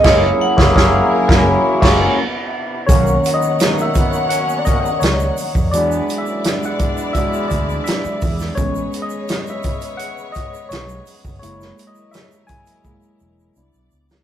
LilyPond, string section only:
\new Staff \with { instrumentName = "String section" } { \time 4/4 \key fis \mixolydian \tempo 4 = 84 <fis e' gis' ais'>2. <c b d'>4 | <b, ais' cis'' fis''>1 | <e e' gis' d''>1 | <gis b' cis''>1 |
<fis e' ais'>2. <c b d''>4 | }